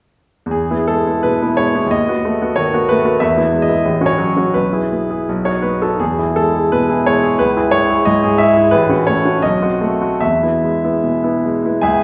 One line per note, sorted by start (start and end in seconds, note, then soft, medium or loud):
0.46 0.66 E2 soft
0.51 0.88 G#4 soft
0.71 0.87 B3 soft
0.71 0.87 E4 soft
0.88 1.17 G#3 soft
0.88 1.23 A4 medium
1.07 1.22 B3 soft
1.07 1.22 E4 soft
1.23 1.51 B2 soft
1.23 1.57 B4 medium
1.42 1.56 B3 soft
1.42 1.57 E4 soft
1.57 1.84 G#3 soft
1.57 1.90 C#5 medium
1.75 1.89 B3 soft
1.75 1.90 E4 soft
1.86 2.05 D#2 soft
1.91 2.58 D#5 medium
2.08 2.23 B3 soft
2.08 2.24 F#4 soft
2.25 2.51 A3 soft
2.42 2.57 B3 soft
2.42 2.56 F#4 soft
2.56 2.83 D#3 soft
2.56 2.89 C#5 medium
2.73 2.88 B3 soft
2.73 2.88 F#4 soft
2.89 3.15 A3 soft
2.89 3.21 B4 medium
3.05 3.20 B3 soft
3.05 3.20 F#4 soft
3.20 3.37 E2 soft
3.20 3.63 E5 medium
3.37 3.52 B3 soft
3.37 3.52 E4 soft
3.53 3.78 G#3 soft
3.62 4.07 D#5 medium
3.69 3.83 B3 soft
3.69 3.84 E4 soft
3.85 4.01 A1 soft
4.01 4.17 C#4 soft
4.01 4.17 F#4 soft
4.06 4.54 C#5 medium
4.18 4.47 F#3 soft
4.37 4.53 C#4 soft
4.37 4.53 F#4 soft
4.54 4.73 B1 soft
4.54 5.27 B4 medium
4.73 4.89 E4 soft
4.73 4.89 G#4 soft
4.92 5.21 B3 soft
5.11 5.26 E4 soft
5.11 5.26 G#4 soft
5.29 5.46 B1 soft
5.45 5.62 D#4 soft
5.45 5.62 F#4 soft
5.45 5.64 C#5 medium
5.62 5.93 B3 soft
5.62 5.82 B4 soft
5.82 5.99 D#4 soft
5.82 5.99 F#4 soft
5.82 6.01 A4 soft
6.00 6.18 E2 soft
6.00 6.18 G#4 medium
6.19 6.35 E4 soft
6.19 6.35 G#4 soft
6.36 6.66 G#3 soft
6.36 6.72 A4 medium
6.56 6.71 E4 soft
6.56 6.71 G#4 soft
6.72 7.00 B2 soft
6.72 7.06 B4 medium
6.90 7.04 E4 soft
6.90 7.05 G#4 soft
7.07 7.33 G#3 soft
7.07 7.39 C#5 medium
7.23 7.38 E4 soft
7.23 7.38 G#4 soft
7.39 7.55 C#2 soft
7.39 7.72 B4 medium
7.57 7.71 E4 soft
7.57 7.71 G#4 soft
7.71 7.99 G#3 soft
7.71 8.05 C#5 medium
7.90 8.04 E4 soft
7.90 8.05 G#4 soft
8.05 8.33 G#2 soft
8.05 8.39 D#5 medium
8.24 8.38 E4 soft
8.24 8.38 G#4 soft
8.38 8.66 G#3 soft
8.38 8.72 E5 medium
8.57 8.71 E4 soft
8.57 8.72 G#4 soft
8.71 8.89 A1 soft
8.71 9.07 B4 medium
8.89 9.05 C#4 soft
8.89 9.05 F#4 soft
9.07 9.36 A3 soft
9.07 9.43 C#5 medium
9.25 9.42 C#4 soft
9.25 9.42 F#4 soft
9.42 9.62 B1 soft
9.42 10.21 D#5 medium
9.62 9.79 C4 soft
9.62 9.80 F#4 soft
9.81 10.13 A3 soft
10.02 10.20 C4 soft
10.02 10.20 F#4 soft
10.21 10.42 E2 soft
10.21 11.44 E5 medium
10.43 10.61 B3 soft
10.43 10.61 E4 soft
10.64 10.96 G#3 soft
10.84 11.02 B3 soft
10.84 11.02 E4 soft
11.04 11.37 B2 soft
11.24 11.42 B3 soft
11.24 11.43 E4 soft
11.45 11.76 G#3 soft
11.65 11.81 B3 soft
11.65 11.81 E4 soft
11.81 12.04 C#2 soft
11.81 12.04 G#4 soft
11.81 12.04 E5 soft
11.81 12.04 G#5 medium